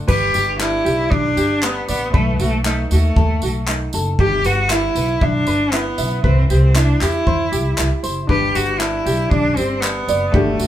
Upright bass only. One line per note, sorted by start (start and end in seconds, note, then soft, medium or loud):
0.09 0.30 G1 loud
0.35 0.77 G1 medium
0.86 1.07 B1 medium
1.12 1.33 B1 medium
1.37 1.79 G1 medium
1.89 2.10 A1 medium
2.14 2.35 B1 loud
2.40 2.82 B1 loud
2.91 3.12 D#2 loud
3.16 3.37 D#2 loud
3.43 3.85 B1 medium
3.94 4.15 F#1 loud
4.19 4.40 G1 loud
4.45 4.87 G1 loud
4.95 5.17 B1 loud
5.21 5.42 B1 medium
5.47 5.89 G1 medium
5.98 6.19 B1 medium
6.24 6.45 C2 loud
6.50 6.92 C2 loud
7.01 7.22 E2 medium
7.27 7.54 E2 medium
7.52 7.73 C2 medium
7.79 7.89 C2 medium
8.04 8.25 F#1 medium
8.29 8.50 G1 medium
8.55 8.97 G1 loud
9.06 9.27 B1 medium
9.31 9.52 B1 medium
9.57 9.99 G1 medium
10.08 10.29 F#1 medium
10.34 10.55 G1 loud
10.60 10.67 G1 loud